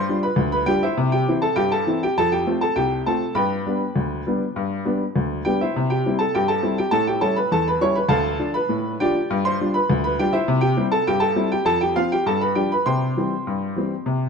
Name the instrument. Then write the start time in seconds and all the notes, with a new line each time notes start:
upright piano
Already playing: C5 C6
0.09 G3 D4 F4
0.23 B4 B5
0.36 D2
0.52 B4 B5
0.66 G3 D4 F4 G4 G5
0.83 E4 C5 E5
0.97 C3
1.12 G4 G5
1.28 E3 C4 E4
1.42 A4 A5
1.56 G2 G4 G5
1.72 A4 A5
1.87 E3 C4 E4
2.03 G4 G5
2.18 F2 A4 A5
2.32 G4 G5
2.47 A3 C4 F4
2.61 A4 A5
2.76 C2 G4 G5
3.06 A3 C4 F4 A4 A5
3.35 G2 B4 G5 B5
3.66 G3 B3 D4
3.96 D2
4.27 G3 B3 D4
4.56 G2
4.85 G3 B3 D4
5.16 D2
5.45 G3 B3 D4 G4 G5
5.61 E4 C5 E5
5.76 C3
5.90 G4 G5
6.06 G3 C4 E4
6.19 A4 A5
6.35 G2 G4 G5
6.48 A4 A5
6.62 G3 C4 E4
6.78 G4 G5
6.91 A2 A4 A5
7.07 G4 G5
7.21 G3 C#4 E4 A4 A5
7.36 B4 B5
7.52 E2 A4 A5
7.68 B4 B5
7.81 G3 C#4 E4 C#5 C#6
7.95 B4 B5
8.09 D2 A4 F5 A5
8.39 F3 D4 F4
8.54 B4 B5
8.69 A2
9.00 F3 D4 F4 G4 D5 G5
9.30 G2
9.45 C5 C6
9.61 G3 D4 F4
9.74 B4 B5
9.90 D2
10.04 B4 B5
10.19 G3 D4 F4 G4 G5
10.33 E4 C5 E5
10.48 C3
10.61 G4 G5
10.77 G3 C4 E4
10.92 A4 A5
11.07 G2 G4 G5
11.20 A4 A5
11.36 G3 C4 E4
11.52 G4 G5
11.65 F2 A4 A5
11.81 G4 G5
11.96 F3 C4 F4 F5
12.12 G4 G5
12.26 G2 A4 A5
12.41 B4 B5
12.55 F3 G3 D4 G4 G5
12.72 B4 B5
12.86 C3 C5 G5 C6
13.17 E3 G3 C4
13.47 G2
13.76 E3 G3 C4
14.06 C3